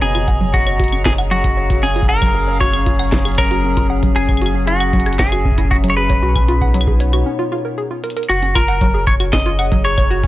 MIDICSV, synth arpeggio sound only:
0, 0, Header, 1, 2, 480
1, 0, Start_track
1, 0, Key_signature, 6, "major"
1, 0, Tempo, 517241
1, 19, Time_signature, 4, 2, 24, 8
1, 9532, End_track
2, 0, Start_track
2, 0, Title_t, "Synth arpeggio sound"
2, 0, Program_c, 0, 84
2, 19, Note_on_c, 0, 61, 83
2, 58, Note_off_c, 0, 61, 0
2, 139, Note_on_c, 0, 65, 101
2, 178, Note_off_c, 0, 65, 0
2, 259, Note_on_c, 0, 78, 104
2, 324, Note_off_c, 0, 78, 0
2, 379, Note_on_c, 0, 54, 101
2, 418, Note_off_c, 0, 54, 0
2, 498, Note_on_c, 0, 68, 85
2, 538, Note_off_c, 0, 68, 0
2, 619, Note_on_c, 0, 73, 76
2, 684, Note_off_c, 0, 73, 0
2, 739, Note_on_c, 0, 66, 101
2, 837, Note_off_c, 0, 66, 0
2, 859, Note_on_c, 0, 61, 73
2, 898, Note_off_c, 0, 61, 0
2, 979, Note_on_c, 0, 65, 99
2, 1018, Note_off_c, 0, 65, 0
2, 1099, Note_on_c, 0, 78, 103
2, 1165, Note_off_c, 0, 78, 0
2, 1218, Note_on_c, 0, 54, 104
2, 1258, Note_off_c, 0, 54, 0
2, 1338, Note_on_c, 0, 68, 73
2, 1378, Note_off_c, 0, 68, 0
2, 1459, Note_on_c, 0, 73, 82
2, 1524, Note_off_c, 0, 73, 0
2, 1578, Note_on_c, 0, 66, 101
2, 1677, Note_off_c, 0, 66, 0
2, 1699, Note_on_c, 0, 61, 79
2, 1738, Note_off_c, 0, 61, 0
2, 1819, Note_on_c, 0, 65, 100
2, 1858, Note_off_c, 0, 65, 0
2, 1939, Note_on_c, 0, 78, 99
2, 2004, Note_off_c, 0, 78, 0
2, 2058, Note_on_c, 0, 54, 101
2, 2098, Note_off_c, 0, 54, 0
2, 2178, Note_on_c, 0, 68, 78
2, 2218, Note_off_c, 0, 68, 0
2, 2298, Note_on_c, 0, 73, 75
2, 2364, Note_off_c, 0, 73, 0
2, 2418, Note_on_c, 0, 66, 102
2, 2517, Note_off_c, 0, 66, 0
2, 2539, Note_on_c, 0, 61, 77
2, 2578, Note_off_c, 0, 61, 0
2, 2658, Note_on_c, 0, 65, 104
2, 2698, Note_off_c, 0, 65, 0
2, 2779, Note_on_c, 0, 78, 95
2, 2845, Note_off_c, 0, 78, 0
2, 2899, Note_on_c, 0, 54, 96
2, 2938, Note_off_c, 0, 54, 0
2, 3019, Note_on_c, 0, 68, 79
2, 3058, Note_off_c, 0, 68, 0
2, 3139, Note_on_c, 0, 73, 79
2, 3204, Note_off_c, 0, 73, 0
2, 3259, Note_on_c, 0, 66, 101
2, 3358, Note_off_c, 0, 66, 0
2, 3379, Note_on_c, 0, 61, 81
2, 3418, Note_off_c, 0, 61, 0
2, 3499, Note_on_c, 0, 65, 102
2, 3538, Note_off_c, 0, 65, 0
2, 3619, Note_on_c, 0, 78, 108
2, 3685, Note_off_c, 0, 78, 0
2, 3739, Note_on_c, 0, 54, 100
2, 3778, Note_off_c, 0, 54, 0
2, 3859, Note_on_c, 0, 68, 84
2, 3898, Note_off_c, 0, 68, 0
2, 3979, Note_on_c, 0, 73, 75
2, 4045, Note_off_c, 0, 73, 0
2, 4099, Note_on_c, 0, 66, 104
2, 4197, Note_off_c, 0, 66, 0
2, 4218, Note_on_c, 0, 61, 76
2, 4258, Note_off_c, 0, 61, 0
2, 4338, Note_on_c, 0, 64, 102
2, 4378, Note_off_c, 0, 64, 0
2, 4458, Note_on_c, 0, 78, 103
2, 4524, Note_off_c, 0, 78, 0
2, 4578, Note_on_c, 0, 54, 103
2, 4618, Note_off_c, 0, 54, 0
2, 4698, Note_on_c, 0, 68, 71
2, 4738, Note_off_c, 0, 68, 0
2, 4818, Note_on_c, 0, 73, 84
2, 4884, Note_off_c, 0, 73, 0
2, 4938, Note_on_c, 0, 66, 102
2, 5037, Note_off_c, 0, 66, 0
2, 5058, Note_on_c, 0, 61, 81
2, 5098, Note_off_c, 0, 61, 0
2, 5178, Note_on_c, 0, 64, 101
2, 5218, Note_off_c, 0, 64, 0
2, 5298, Note_on_c, 0, 78, 99
2, 5364, Note_off_c, 0, 78, 0
2, 5418, Note_on_c, 0, 54, 107
2, 5458, Note_off_c, 0, 54, 0
2, 5538, Note_on_c, 0, 68, 78
2, 5578, Note_off_c, 0, 68, 0
2, 5658, Note_on_c, 0, 73, 74
2, 5724, Note_off_c, 0, 73, 0
2, 5778, Note_on_c, 0, 66, 100
2, 5877, Note_off_c, 0, 66, 0
2, 5898, Note_on_c, 0, 61, 75
2, 5938, Note_off_c, 0, 61, 0
2, 6018, Note_on_c, 0, 65, 105
2, 6058, Note_off_c, 0, 65, 0
2, 6138, Note_on_c, 0, 78, 95
2, 6204, Note_off_c, 0, 78, 0
2, 6258, Note_on_c, 0, 54, 106
2, 6298, Note_off_c, 0, 54, 0
2, 6378, Note_on_c, 0, 68, 78
2, 6418, Note_off_c, 0, 68, 0
2, 6498, Note_on_c, 0, 73, 76
2, 6564, Note_off_c, 0, 73, 0
2, 6618, Note_on_c, 0, 66, 96
2, 6717, Note_off_c, 0, 66, 0
2, 6738, Note_on_c, 0, 61, 84
2, 6778, Note_off_c, 0, 61, 0
2, 6858, Note_on_c, 0, 65, 104
2, 6898, Note_off_c, 0, 65, 0
2, 6978, Note_on_c, 0, 65, 103
2, 7077, Note_off_c, 0, 65, 0
2, 7098, Note_on_c, 0, 70, 75
2, 7164, Note_off_c, 0, 70, 0
2, 7218, Note_on_c, 0, 68, 83
2, 7284, Note_off_c, 0, 68, 0
2, 7338, Note_on_c, 0, 65, 77
2, 7404, Note_off_c, 0, 65, 0
2, 7458, Note_on_c, 0, 70, 81
2, 7557, Note_off_c, 0, 70, 0
2, 7578, Note_on_c, 0, 70, 96
2, 7644, Note_off_c, 0, 70, 0
2, 7698, Note_on_c, 0, 66, 101
2, 7797, Note_off_c, 0, 66, 0
2, 7818, Note_on_c, 0, 61, 76
2, 7858, Note_off_c, 0, 61, 0
2, 7938, Note_on_c, 0, 65, 101
2, 7978, Note_off_c, 0, 65, 0
2, 8058, Note_on_c, 0, 78, 99
2, 8124, Note_off_c, 0, 78, 0
2, 8178, Note_on_c, 0, 54, 105
2, 8218, Note_off_c, 0, 54, 0
2, 8299, Note_on_c, 0, 68, 78
2, 8338, Note_off_c, 0, 68, 0
2, 8418, Note_on_c, 0, 73, 78
2, 8484, Note_off_c, 0, 73, 0
2, 8538, Note_on_c, 0, 66, 99
2, 8637, Note_off_c, 0, 66, 0
2, 8659, Note_on_c, 0, 61, 80
2, 8698, Note_off_c, 0, 61, 0
2, 8778, Note_on_c, 0, 65, 108
2, 8818, Note_off_c, 0, 65, 0
2, 8898, Note_on_c, 0, 78, 107
2, 8964, Note_off_c, 0, 78, 0
2, 9018, Note_on_c, 0, 54, 97
2, 9058, Note_off_c, 0, 54, 0
2, 9138, Note_on_c, 0, 68, 81
2, 9178, Note_off_c, 0, 68, 0
2, 9258, Note_on_c, 0, 73, 82
2, 9324, Note_off_c, 0, 73, 0
2, 9378, Note_on_c, 0, 66, 109
2, 9477, Note_off_c, 0, 66, 0
2, 9498, Note_on_c, 0, 61, 77
2, 9532, Note_off_c, 0, 61, 0
2, 9532, End_track
0, 0, End_of_file